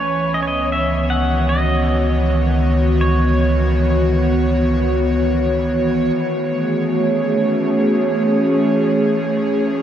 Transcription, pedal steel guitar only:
0.00 0.36 C#5 medium
0.34 0.42 D#5 medium
0.43 0.47 C#5 medium
0.47 0.72 D#5 medium
0.72 1.12 E5 medium
1.10 1.49 F#5 medium
1.49 3.07 D#5 medium
3.01 4.53 C#5 medium

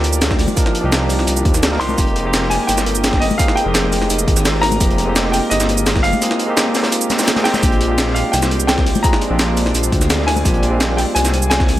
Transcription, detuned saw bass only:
0.00 0.47 D2 medium
0.84 1.26 C2 medium
1.28 1.43 C2 medium
1.45 1.64 D#2 loud
1.63 1.79 D2 medium
1.80 1.96 C2 medium
1.98 2.59 F1 loud
2.69 3.29 G1 medium
3.66 4.08 F1 medium
4.10 4.26 F1 medium
4.28 4.79 G#1 loud
4.81 5.41 F1 loud
5.51 6.12 G1 medium
7.63 8.23 A#1 loud
8.34 8.94 C2 medium
9.30 9.73 A#1 medium
9.75 9.91 A#1 medium
9.92 10.44 D2 loud
10.45 11.06 A#1 loud
11.16 11.76 C2 medium

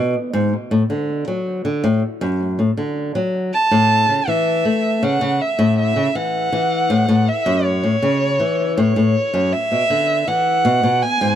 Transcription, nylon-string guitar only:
0.00 0.14 B2 medium
0.33 0.53 G#2 loud
0.71 0.82 A2 medium
0.90 1.26 D3 medium
1.28 1.63 F#3 medium
1.65 1.82 D3 medium
1.84 2.02 A2 medium
2.21 2.57 F#2 medium
2.59 2.70 A2 medium
2.77 3.13 D3 medium
3.15 3.51 F#3 medium
3.71 4.07 A2 medium
4.09 4.20 C#3 medium
4.28 4.63 E3 medium
4.65 5.01 A3 medium
5.03 5.20 C#3 medium
5.21 5.39 C#3 medium
5.59 5.95 A2 medium
5.96 6.07 C#3 medium
6.15 6.51 E3 medium
6.52 6.88 E3 medium
6.90 7.07 A2 medium
7.08 7.27 A2 medium
7.46 7.82 F#2 loud
7.83 7.95 A2 medium
8.02 8.38 C#3 medium
8.40 8.76 E3 medium
8.78 8.95 A2 medium
8.96 9.14 A2 medium
9.34 9.53 F#2 medium
9.72 9.82 B2 medium
9.90 10.26 D3 medium
10.28 10.63 E3 medium
10.65 10.82 B2 medium
10.83 11.02 B2 medium
11.21 11.35 G#2 medium

